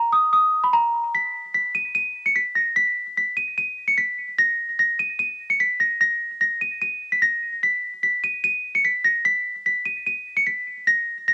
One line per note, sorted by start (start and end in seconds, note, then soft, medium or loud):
0.00 0.10 A#5 medium
0.13 0.31 D#6 medium
0.33 0.62 D#6 medium
0.64 0.73 B5 medium
0.73 1.12 A#5 medium
1.15 1.53 B6 medium
1.55 1.73 B6 medium
1.75 1.93 D#7 medium
1.95 2.24 D#7 medium
2.26 2.35 C#7 medium
2.36 2.54 B6 medium
2.55 2.74 A#6 medium
2.76 3.14 B6 loud
3.17 3.35 B6 medium
3.37 3.55 D#7 medium
3.58 3.86 D#7 medium
3.88 3.97 C#7 medium
3.98 4.36 B6 medium
4.38 4.76 A#6 loud
4.79 4.97 A#6 medium
4.99 5.17 D#7 medium
5.19 5.48 D#7 medium
5.50 5.59 C#7 medium
5.60 5.78 B6 medium
5.80 5.98 A#6 medium
6.01 6.39 A#6 loud
6.41 6.59 A#6 medium
6.61 6.79 D#7 medium
6.82 7.10 D#7 medium
7.12 7.21 B6 medium
7.22 7.60 A#6 loud
7.63 8.01 B6 medium
8.03 8.21 B6 medium
8.24 8.42 D#7 medium
8.44 8.72 D#7 medium
8.75 8.84 C#7 medium
8.84 9.02 B6 medium
9.04 9.23 A#6 medium
9.25 9.63 B6 loud
9.66 9.84 B6 medium
9.85 10.04 D#7 medium
10.06 10.35 D#7 medium
10.37 10.45 C#7 medium
10.46 10.85 B6 medium
10.87 11.25 A#6 loud
11.28 11.34 A#6 medium